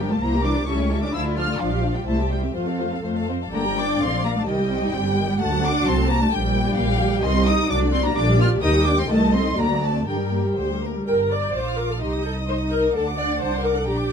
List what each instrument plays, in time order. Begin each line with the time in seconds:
Already playing: double bass section G1, cello section G3
0.01 viola section F3 D4, violin section G4 A#4
0.11 viola section G3 A#3, cello section A3, violin section F4 G4 A5
0.22 double bass section C2, viola section E3 E4, cello section A#3, violin section A#4 C5 A#5
0.34 viola section G3 C4, violin section G4 A#4
0.45 viola section E3 E4, cello section D4, violin section A#4 C5 D6
0.58 viola section G3 C4, violin section G4 A#4
0.67 double bass section C#2, viola section G3 E4, cello section C#4, violin section A4 E5 C#6
0.79 viola section A3 C#4, violin section G4 C#5
0.91 viola section G3 E4, violin section A4 E5
1.02 viola section A3 C#4, cello section D4, violin section G4 C#5 D6
1.13 double bass section D2, viola section F3 D4, cello section E4, violin section A4 F5 E6
1.26 viola section A3 F4, violin section F4 D5
1.37 viola section F3 D4, cello section F4, violin section A4 F5 F6
1.49 viola section A3 F4, violin section F4 D5
1.60 double bass section A#1, cello section F3, viola section F3 D4, violin section F4 D5 F5
1.72 viola section G3 F4, violin section G4 F5
1.84 viola section F3 D4, violin section F4 D5
1.95 cello section G3, viola section G3 F4, violin section G4 F5 G5
2.06 double bass section C2, viola section G3 E4, cello section A3, violin section E4 C5 A5
2.18 viola section C4 G4, violin section G4 E5
2.30 cello section G3, viola section G3 E4, violin section E4 C5 G5
2.43 viola section C4 G4, violin section G4 E5
2.55 double bass section F2, cello section F3, viola section A3 F4, violin section C5 F5
2.68 viola section C4 A4, violin section A4 F5
2.80 viola section A3 F4, violin section C5
2.92 viola section C4 A4, violin section A4 F5
3.04 double bass section F2, viola section A3, violin section C5
3.17 violin section A4 F5
3.28 viola section C4, violin section C5
3.42 violin section A4 F5
3.52 double bass section G1, viola section D3 D5, cello section A#3, violin section G5 A#5
3.65 viola section G3
3.76 viola section A#3, cello section D4, violin section D6
3.89 viola section D4
4.01 double bass section A#1, viola section D3, cello section C4, violin section F5 C6
4.12 viola section F3
4.24 cello section A#3, viola section A#3, violin section A#5
4.36 cello section A3, viola section D4, violin section A5
4.47 double bass section C2, viola section D#3 G4, cello section G3, violin section D#5 G5
4.60 viola section G3
4.72 viola section C4
4.84 viola section D#4
4.93 double bass section G1, viola section C4, violin section G5
5.07 viola section G3
5.18 viola section D#3
5.30 viola section G3
5.40 double bass section D2, viola section D3 F#4, cello section A3, violin section F#5 A5
5.52 viola section F#3
5.64 viola section A3, cello section D4, violin section D6
5.75 viola section D4
5.85 double bass section C2, viola section F#3, cello section C4, violin section A5 C6
5.98 viola section A3
6.09 cello section A#3, viola section C4, violin section A#5
6.21 cello section A3, viola section D4, violin section A5
6.32 double bass section A#1, viola section D3 G4, cello section G3, violin section G5
6.44 viola section G3
6.55 viola section A#3
6.66 viola section D4
6.77 double bass section A#1, viola section A#3, violin section F5
6.89 viola section G3
7.00 viola section D3
7.12 viola section G3
7.23 double bass section C2, viola section D#3, cello section C4, violin section D#5 C6
7.35 viola section G3
7.46 viola section C4, cello section D#4, violin section D#6
7.59 viola section D#4
7.69 double bass section C2, viola section F#3 F#4, cello section D4, violin section D5 D6
7.81 viola section A3
7.93 viola section C4, cello section C4, violin section C6
8.05 cello section A#3, viola section D4, violin section A#5
8.16 double bass section A#1, viola section D3 G4, cello section D4, violin section D5 D6
8.28 viola section G3
8.40 viola section A#3, cello section F4, violin section F6
8.51 viola section D4
8.63 double bass section D#2, viola section D#3, cello section D#4, violin section G5 D#6
8.75 viola section G3
8.86 viola section A#3, cello section D4, violin section D6
8.98 viola section G3, cello section C4, violin section C6
9.09 double bass section C2, viola section D#3 A4, cello section A3, violin section D#5 A5
9.22 viola section A3
9.34 cello section C4, viola section C4, violin section C6
9.46 viola section D#4
9.58 double bass section D2, viola section D3 F#4, cello section A#3, violin section D5 A#5
9.70 viola section F#3
9.83 cello section A3, viola section A3, violin section A5
9.95 viola section C4
10.07 double bass section G2, viola section D3 G4, cello section G3, violin section A#4 G5
10.20 viola section G3
10.33 viola section A#3
10.45 viola section G3
10.57 double bass section D2, viola section D3, violin section C5
10.71 viola section G3
10.82 viola section A#3, violin section A#4
10.96 viola section G3
11.07 double bass section G1, viola section A#4, violin section G5 A#5
11.19 violin section A#5
11.31 viola section D5, violin section D6
11.43 violin section G6
11.54 double bass section A#1, cello section F4, viola section C5, violin section F5 D6
11.68 violin section F6
11.79 viola section A#4, violin section D6
11.91 viola section A4, violin section F6
12.01 double bass section C2, cello section D#4, viola section G4, violin section D#5 C6 D#6
12.12 violin section D#6
12.24 viola section A4, violin section G6
12.36 violin section D#6
12.47 cello section D#4, viola section C5, violin section C6
12.60 violin section D#6
12.72 viola section A#4, violin section G6
12.84 violin section D#6
12.95 double bass section D2, cello section D4, viola section A4, violin section F#5 A5 D6
13.08 violin section D6
13.19 viola section D5, violin section F#6
13.32 violin section A6
13.41 double bass section C2, viola section C5, violin section A5
13.54 violin section C6
13.65 viola section A#4, violin section D6
13.78 viola section A4, violin section F#6
13.87 double bass section A#1, cello section D4, viola section G4, violin section G5 A#5
13.98 violin section D6